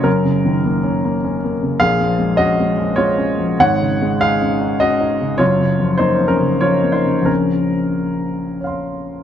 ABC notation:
X:1
M:3/4
L:1/8
Q:1/4=100
K:Bbm
V:1 name="Upright piano"
[DB]4- [DB] z | [Af]2 [Ge]2 [Fd]2 | [dg]2 [Af]2 [Ge]2 | [Fd]2 [Ec] [DB] [Fd] [Ec] |
[DB]4 [dfc']2 |]
V:2 name="Upright piano" clef=bass
(3[G,,,G,,] D, E, (3B, D B, (3D B, D, | (3[B,,,B,,] F, A, (3D A, F, (3A, D F, | (3[A,,,A,,] D, A, (3E D E (3D E D, | (3[G,,,G,,] D, F, (3B, F, D, (3F, B, D, |
[B,,,D,F,C]6 |]